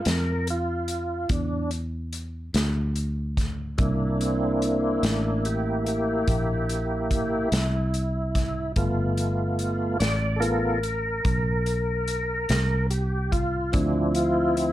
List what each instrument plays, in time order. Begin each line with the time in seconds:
0.05 fingered electric bass F2, tonewheel organ A#4, snare, closed hi-hat
0.47 tonewheel organ F4, closed hi-hat
0.88 closed hi-hat
1.29 fingered electric bass E2, tonewheel organ D4, kick, closed hi-hat
1.71 closed hi-hat
2.13 closed hi-hat
2.54 fingered electric bass D2, snare, closed hi-hat
2.96 closed hi-hat
3.37 kick, snare, closed hi-hat
3.78 fingered electric bass C2, tonewheel organ A#3 D4 E4, kick, closed hi-hat
4.21 tonewheel organ C4, closed hi-hat
4.62 closed hi-hat
5.03 fingered electric bass A1, tonewheel organ D4, snare, closed hi-hat
5.45 tonewheel organ G4, closed hi-hat
5.86 tonewheel organ A#3 G4, closed hi-hat
6.28 fingered electric bass A#1, kick, closed hi-hat
6.69 closed hi-hat
7.11 kick, closed hi-hat
7.52 fingered electric bass C2, snare, closed hi-hat
7.94 closed hi-hat
8.35 kick, snare, closed hi-hat
8.76 fingered electric bass G1, tonewheel organ A3 B3 F4, kick, closed hi-hat
9.17 closed hi-hat
9.59 closed hi-hat
10.00 fingered electric bass A1, tonewheel organ D5, snare, closed hi-hat
10.36 tonewheel organ B3 A4
10.40 tonewheel organ F4 A#4, closed hi-hat
10.83 closed hi-hat
11.25 fingered electric bass B1, kick, closed hi-hat
11.66 closed hi-hat
12.08 closed hi-hat
12.49 fingered electric bass C2, snare, closed hi-hat
12.90 tonewheel organ G4, closed hi-hat
13.32 tonewheel organ F4, kick, closed hi-hat
13.72 fingered electric bass D2, tonewheel organ F3 C4 D4 E4, kick, closed hi-hat
14.15 tonewheel organ F4, closed hi-hat
14.57 tonewheel organ C4, closed hi-hat